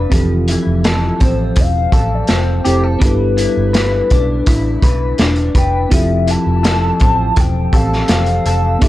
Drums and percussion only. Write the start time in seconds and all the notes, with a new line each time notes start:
0.12 kick, closed hi-hat
0.48 closed hi-hat
0.84 snare, closed hi-hat
1.20 kick, closed hi-hat
1.56 kick, closed hi-hat
1.92 kick, closed hi-hat
2.27 snare, closed hi-hat
2.65 closed hi-hat
3.01 kick, closed hi-hat
3.38 closed hi-hat
3.74 snare, closed hi-hat
4.10 kick, closed hi-hat
4.46 kick, closed hi-hat
4.82 kick, closed hi-hat
5.18 snare, closed hi-hat
5.36 closed hi-hat
5.55 kick, closed hi-hat
5.91 kick, closed hi-hat
6.28 closed hi-hat
6.64 snare, closed hi-hat
7.00 kick, closed hi-hat
7.36 kick, closed hi-hat
7.73 kick, closed hi-hat
7.93 snare
8.08 snare, closed hi-hat
8.26 closed hi-hat
8.46 closed hi-hat
8.82 kick, closed hi-hat